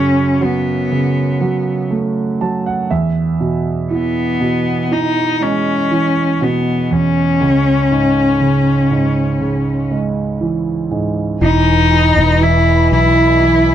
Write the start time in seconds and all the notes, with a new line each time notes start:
Already playing: F#2 C#3 C#4
0.41 F#3 B3
0.91 C#3
1.41 F#3
1.91 A3
2.41 F#3 A5
2.66 F#5
2.91 E2 E5
3.40 B2
3.91 E3 B3
4.40 B2
4.91 E3 D#4
5.41 G#3 C#4
5.91 E3
6.41 B2 B3
6.91 E2 C#4
7.41 C#2
7.91 G#2
8.40 C#3
8.91 G#2
9.41 C#3
9.91 G#3
10.41 E3
10.91 G#2
11.40 E1 E3 D#4 D#5 G#5 B5
11.91 E3
12.16 E1
12.41 E3 E4
12.91 B1 E3 E4
13.41 E3